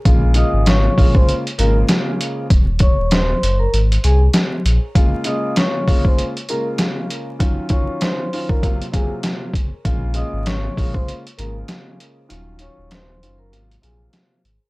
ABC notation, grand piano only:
X:1
M:4/4
L:1/8
Q:"Swing 16ths" 1/4=98
K:Bbm
V:1 name="Grand piano"
[D,A,B,F] [D,A,B,F]2 [D,A,B,F] z [D,A,B,F]3 | z8 | [D,A,B,F] [D,A,B,F]2 [D,A,B,F] z [D,A,B,F]3 | [E,G,DF] [E,G,DF]2 [E,G,DF] [C,G,B,F] [C,G,B,F]2 z |
[D,A,B,F] [D,A,B,F]2 [D,A,B,F] z [D,A,B,F]3 | [E,G,DF] [E,G,DF]2 [E,G,DF] [C,G,B,F] [C,G,B,F]2 z |]